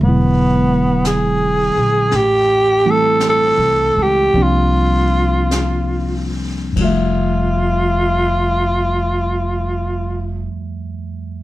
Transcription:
0.00 1.71 E1 medium
0.00 2.11 D3 soft
0.00 2.12 F#3 soft
0.00 2.13 G#3 soft
0.00 1.02 B3 medium
0.00 brush sweep soft
0.06 2.15 B3 soft
0.06 2.16 E4 soft
1.05 2.17 G#4 medium
1.05 brush sweep soft
1.05 snare soft
1.05 hi-hat pedal medium
1.76 2.10 A#1 medium
2.11 3.54 A1 medium
2.11 brush sweep soft
2.11 snare soft
2.16 2.92 G4 medium
2.85 4.35 E3 soft
2.85 4.34 G3 soft
2.85 4.35 A3 soft
2.85 4.35 C4 soft
2.85 4.35 E4 soft
2.90 3.25 A4 medium
3.20 brush sweep soft
3.20 snare soft
3.20 hi-hat pedal soft
3.29 4.04 A4 medium
3.58 3.93 C2 medium
3.96 4.32 C#2 medium
4.02 4.44 G4 medium
4.34 6.73 C2 medium
4.34 6.75 F3 medium
4.34 6.77 G3 soft
4.34 6.78 A#3 soft
4.34 6.78 C4 soft
4.34 6.78 D4 medium
4.34 brush sweep soft
4.42 6.38 F4 medium
5.51 brush sweep soft
5.51 snare soft
5.51 hi-hat pedal medium
6.72 10.44 F1 medium
6.72 10.44 F2 medium
6.72 10.48 F3 soft
6.72 kick soft
6.72 ride medium
6.79 10.51 G3 soft
6.79 10.54 A3 soft
6.79 10.49 F4 medium
6.84 10.56 E5 medium

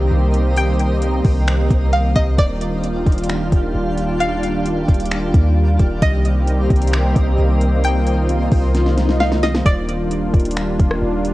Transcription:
0.00 0.10 C2 loud
0.00 2.34 D#3 medium
0.00 2.34 G3 medium
0.00 5.98 A#3 medium
0.00 2.35 C4 medium
0.00 2.35 G4 medium
0.00 2.35 A#4 medium
0.00 0.52 D#5 loud
0.00 2.35 D#5 medium
0.11 1.21 C2 loud
0.34 closed hi-hat medium
0.56 1.89 G5 loud
0.56 closed hi-hat medium
0.79 closed hi-hat medium
1.02 closed hi-hat medium
1.24 1.68 C2 loud
1.24 kick medium
1.24 open hi-hat medium
1.47 finger snap loud
1.47 closed hi-hat medium
1.70 2.14 C2 loud
1.70 kick medium
1.70 closed hi-hat medium
1.93 2.14 F5 medium
2.16 2.38 C2 loud
2.16 2.37 D#5 medium
2.16 kick medium
2.16 closed hi-hat medium
2.38 3.04 D#1 loud
2.38 5.98 D#3 medium
2.38 9.62 G3 medium
2.38 5.98 D4 medium
2.38 5.98 F4 medium
2.38 5.98 G4 medium
2.38 4.16 D5 loud
2.38 5.98 F5 medium
2.38 kick loud
2.38 closed hi-hat medium
2.61 closed hi-hat medium
2.84 closed hi-hat medium
3.06 3.50 D#1 loud
3.06 kick medium
3.06 closed hi-hat soft
3.12 closed hi-hat medium
3.18 closed hi-hat medium
3.24 closed hi-hat medium
3.29 finger snap loud
3.29 closed hi-hat medium
3.52 3.74 D#1 loud
3.52 kick medium
3.52 closed hi-hat medium
3.75 4.84 D#1 loud
3.98 closed hi-hat medium
4.20 5.53 F5 medium
4.20 closed hi-hat medium
4.43 closed hi-hat medium
4.66 closed hi-hat medium
4.88 5.32 D#1 loud
4.88 kick loud
4.88 closed hi-hat soft
4.94 closed hi-hat medium
5.00 closed hi-hat medium
5.06 closed hi-hat medium
5.11 finger snap loud
5.11 closed hi-hat medium
5.34 5.78 D#2 loud
5.34 kick medium
5.34 closed hi-hat medium
5.79 6.01 D#1 loud
5.79 kick medium
5.79 closed hi-hat medium
6.02 6.68 C2 loud
6.02 9.62 D#3 medium
6.02 9.62 A#3 medium
6.02 9.62 C4 medium
6.02 7.82 G4 medium
6.02 7.82 A#4 medium
6.02 7.80 D#5 loud
6.02 9.62 D#5 medium
6.02 kick loud
6.02 closed hi-hat medium
6.02 swell medium
6.25 closed hi-hat medium
6.47 closed hi-hat medium
6.70 7.14 C2 loud
6.70 kick loud
6.70 closed hi-hat soft
6.76 closed hi-hat medium
6.82 closed hi-hat medium
6.87 closed hi-hat medium
6.93 finger snap loud
6.93 closed hi-hat medium
7.16 7.38 C2 loud
7.16 kick medium
7.16 closed hi-hat medium
7.38 8.48 C2 loud
7.61 closed hi-hat medium
7.84 9.64 F4 medium
7.84 9.64 C5 medium
7.84 9.17 G5 loud
7.84 closed hi-hat medium
8.07 closed hi-hat medium
8.29 closed hi-hat medium
8.52 9.62 C2 loud
8.52 kick medium
8.52 open hi-hat medium
8.75 snare medium
8.75 closed hi-hat medium
8.86 snare medium
8.98 snare medium
8.98 closed hi-hat medium
9.09 snare medium
9.20 9.42 F5 medium
9.20 snare medium
9.32 snare medium
9.43 9.65 D#5 medium
9.43 snare medium
9.43 closed hi-hat medium
9.55 snare medium
9.65 10.31 D#1 loud
9.65 11.34 D#3 medium
9.65 11.34 G3 medium
9.65 11.34 A#3 medium
9.65 11.34 D4 medium
9.65 11.34 F4 medium
9.65 11.34 D5 loud
9.65 kick loud
9.65 closed hi-hat medium
9.89 closed hi-hat medium
10.11 closed hi-hat medium
10.34 10.77 D#1 loud
10.34 kick medium
10.34 closed hi-hat medium
10.40 closed hi-hat medium
10.45 closed hi-hat medium
10.51 closed hi-hat medium
10.57 finger snap loud
10.57 closed hi-hat medium
10.79 11.01 D#1 loud
10.79 kick medium
10.79 closed hi-hat medium
10.91 cross-stick medium
11.02 11.34 D#1 loud
11.25 closed hi-hat medium

